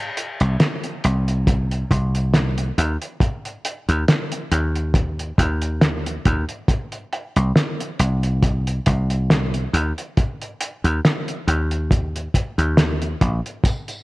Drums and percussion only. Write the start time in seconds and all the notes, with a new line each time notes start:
0.17 closed hi-hat
0.40 closed hi-hat
0.60 snare, closed hi-hat
0.84 closed hi-hat
1.04 closed hi-hat
1.28 closed hi-hat
1.47 kick, closed hi-hat
1.71 closed hi-hat
1.91 kick, closed hi-hat
2.15 closed hi-hat
2.34 snare, closed hi-hat
2.58 closed hi-hat
2.78 closed hi-hat
3.02 closed hi-hat
3.20 kick, closed hi-hat
3.45 closed hi-hat
3.65 closed hi-hat
3.89 closed hi-hat
4.08 snare, closed hi-hat
4.32 closed hi-hat
4.52 closed hi-hat
4.76 closed hi-hat
4.94 kick, closed hi-hat
5.19 closed hi-hat
5.38 kick, closed hi-hat
5.62 closed hi-hat
5.81 snare, closed hi-hat
6.06 closed hi-hat
6.25 kick, closed hi-hat
6.49 closed hi-hat
6.68 kick, closed hi-hat
6.92 closed hi-hat
7.13 closed hi-hat
7.36 closed hi-hat
7.56 snare, closed hi-hat
7.80 closed hi-hat
8.00 closed hi-hat
8.23 closed hi-hat
8.43 kick, closed hi-hat
8.67 closed hi-hat
8.86 kick, closed hi-hat
9.10 closed hi-hat
9.30 snare, closed hi-hat
9.54 closed hi-hat
9.74 closed hi-hat
9.98 closed hi-hat
10.17 kick, closed hi-hat
10.41 closed hi-hat
10.60 closed hi-hat
10.84 closed hi-hat
11.05 snare, closed hi-hat
11.28 closed hi-hat
11.48 closed hi-hat
11.71 closed hi-hat
11.91 kick, closed hi-hat
12.16 closed hi-hat
12.34 kick, closed hi-hat
12.59 closed hi-hat
12.77 snare, closed hi-hat
13.02 closed hi-hat
13.21 kick, closed hi-hat
13.46 closed hi-hat
13.64 kick, closed hi-hat, tambourine
13.88 closed hi-hat, tambourine